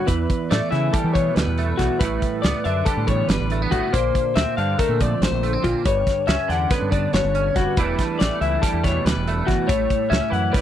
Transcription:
Already playing: B3
0.06 E2 B4, kick, closed hi-hat
0.30 kick, closed hi-hat
0.51 A2 A3 D5, snare, closed hi-hat
0.71 C#3 E3 E5, snare, closed hi-hat
0.93 G3 A4, kick, closed hi-hat
1.04 E3
1.14 B2 C#5, kick, closed hi-hat
1.35 D2 B4, snare, closed hi-hat
1.47 E2
1.58 A3, closed hi-hat
1.77 B1 E2 F#4, kick, snare, closed hi-hat
1.99 A1 A2 B4, kick, closed hi-hat
2.22 kick, closed hi-hat
2.42 C#2 B3 D5, snare, closed hi-hat
2.64 F#2 D3 E5, closed hi-hat
2.85 G3 A4, kick, closed hi-hat
2.97 A2
3.07 E2 C#5, kick, closed hi-hat
3.28 G1 B4, snare, closed hi-hat
3.40 A1
3.50 A3, closed hi-hat
3.62 B3
3.71 A1 A2 F#4, kick, closed hi-hat
3.93 A#1 A#2 C5, kick, closed hi-hat
4.15 kick, closed hi-hat
4.35 D2 C4 E5, snare, closed hi-hat
4.57 G2 D3 F5, closed hi-hat
4.79 A3 A#4, kick, closed hi-hat
4.89 A#2
5.00 F2 D5, kick, closed hi-hat
5.21 A1 C5, snare, closed hi-hat
5.31 A#1
5.43 A3, closed hi-hat
5.53 C4
5.63 A#1 A#2 F4, kick, closed hi-hat
5.85 G1 G2 C#5, kick, closed hi-hat
6.07 kick, snare, closed hi-hat
6.27 C#2 C#4 E5, snare, closed hi-hat
6.48 E2 D3 F#5, snare, closed hi-hat
6.70 B3 B4, kick, snare, closed hi-hat
6.82 G2
6.91 D3 D5, kick, closed hi-hat
7.13 F#1 C#5, snare, closed hi-hat
7.24 G1
7.35 C#4, closed hi-hat
7.56 F1 G2 F#4, kick, snare, closed hi-hat
7.77 E1 E2 E3 G3 A3 D4 B4, kick, closed hi-hat
7.98 kick, snare, closed hi-hat
8.19 A1 A3 D5, snare, closed hi-hat
8.41 C#2 E3 E5, closed hi-hat
8.62 G3 A4, kick, snare, closed hi-hat
8.73 E2
8.83 B2 C#5, kick, snare, closed hi-hat
9.05 D2 B4, snare, closed hi-hat
9.16 E1
9.27 A3, closed hi-hat
9.47 G1 E2 F#4, kick, snare, closed hi-hat
9.67 A1 A2 C#5, kick, closed hi-hat
9.90 kick, closed hi-hat
10.10 C#2 C#4 E5, snare, closed hi-hat
10.30 F#2 E3 F#5, closed hi-hat
10.52 G3 B4, kick, closed hi-hat
10.56 snare

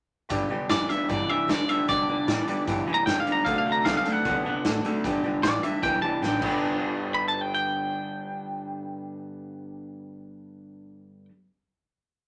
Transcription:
0.29 G2 D3 G3 B3 D4 G4 B4 D5 G5, kick, closed hi-hat
0.49 G2 D3 G3 B3 D4 G4 B4 D5 G5
0.69 F#2 G2 E3 G3 B3 D4 G4 B4 D5 G5, snare, closed hi-hat
0.88 G2 D3 G3 B3 D4 G4 B4 D5 E5 G5, muted upright bass stroke, closed hi-hat
1.08 G2 D3 E3 G3 B3 D4 G4 B4 D5 G5, kick, closed hi-hat
1.28 G2 E3 G3 B3 D4 G4 B4 D5 E5 G5
1.48 G2 D3 G3 B3 D4 G4 B4 D5 G5, snare, closed hi-hat
1.67 G2 D3 G3 B3 D4 G4 B4 D5 E5 G5, muted upright bass stroke, closed hi-hat
1.88 G2 B2 D3 G3 B3 D4 G4 B4 D5 G5, kick, closed hi-hat
2.07 G2 D3 G3 B3 D4 G4 B4 D5 G5, muted upright bass stroke
2.27 G2 A2 E3 G3 B3 D4 G4 B4 D5 G5, snare, closed hi-hat
2.47 G2 D3 G3 B3 D4 G4 B4 D5 G5, muted upright bass stroke, closed hi-hat
2.67 G2 D3 E3 G3 B3 D4 G4 B4 D5 G5, kick, closed hi-hat
2.87 G2 E3 G3 B3 D4 G4 B4 D5 G5, muted upright bass stroke
2.94 A#5
3.06 F#2 G2 D3 G3 B3 D4 G4 B4 D5 G5, snare, closed hi-hat
3.20 F5
3.26 G2 D3 G3 B3 D4 G4 B4 D5 G5, closed hi-hat
3.32 A#5
3.45 D2 D3 F#3 A3 C4 D4 A4 D5 F5 F#5, kick, closed hi-hat
3.58 F5
3.66 D3 A3 C4 D4 A4 D5 F#5, muted upright bass stroke
3.72 A#5
3.85 C2 D3 F#3 B3 C4 D4 A4 D5 E5 F5, snare, closed hi-hat
3.97 F5
4.05 D3 A3 C4 D4 A4 D5 F#5, closed hi-hat
4.12 F#5
4.25 B1 D3 F#3 B3 C4 D4 A4 D5 F#5, kick, closed hi-hat
4.45 D3 B3 C4 D4 A4 D5 F#5, muted upright bass stroke
4.63 A1 D3 F#3 A3 C4 D4 A4 D5 F#5, snare, closed hi-hat
4.67 A4
4.84 D3 A3 C4 D4 A4 D5 F#5, muted upright bass stroke, closed hi-hat
5.04 G1 G2 D3 G3 B3 D4 G4 B4 D5 G5, kick, closed hi-hat
5.23 G2 D3 G3 B3 D4 G4 B4 D5 G5, muted upright bass stroke
5.42 A1 G2 E3 B3 G4 B4 D5 F#5, snare, closed hi-hat
5.62 G2 D3 G3 B3 D4 G4 B4 D5 E5, muted upright bass stroke, closed hi-hat
5.82 B1 G2 D3 E3 G3 B3 D4 G4 B4 D5 G5, kick, closed hi-hat
6.02 G2 E3 G3 B3 D4 G4 B4 D5 G5 A5, muted upright bass stroke
6.22 A1 G2 D3 G3 B3 D4 G4 B4 D5 G5, snare
6.39 G1 G2 D3 G3 B3 B4 D5, kick, crash
6.44 G3 B3 D4 G4 G5
6.49 D4 G4
7.14 B5
7.28 A5
7.41 G5
7.54 G5

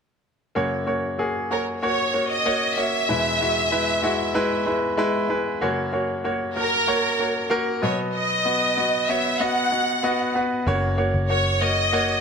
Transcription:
0.55 F#2 C#3 A#3 F#4 C#5
0.86 A#3 F#4 C#5
1.18 A#3 F#4 G#4
1.51 A#3 F#4 A#4 C#5
1.82 A#3 F#4 C#5
2.14 A#3 F#4 C#5
2.30 D#5
2.45 A#3 F#4 C#5
2.77 A#3 F#4 C#5 E5
3.08 E2 B2 G#3 E4 B4
3.40 G#3 E4 F#4
3.71 G#3 E4 B4
4.02 G#3 E4 F#4
4.34 G#3 E4 B4
4.66 G#3 E4 B4
4.97 G#3 E4 B4
5.29 G#3 E4 B4
5.61 F#2 C#3 A#3 F#4 C#5
5.92 A#3 F#4 C#5
6.24 A#3 F#4 C#5
6.56 A#3 F#4 A#4
6.87 A#3 F#4 C#5
7.19 A#3 F#4 C#5
7.50 A#3 F#4 A#4
7.82 B2 F#3 B3 F#4 C#5 D#5
8.15 D#5
8.45 B3 F#4 D#5
8.77 B3 F#4 D#5
9.08 B3 F#4 C#5 E5
9.40 B3 F#4 D#5 F#5
9.71 B3 F#4 D#5
10.03 B3 F#4 D#5
10.35 B3 F#4 B4
10.66 F#1 C#3 A#3 F#4 C#5
10.97 A#3 F#4 C#5
11.14 F#1
11.29 A#3 F#4 C#5
11.60 A#3 F#4 C#5 D#5
11.92 A#3 F#4 C#5

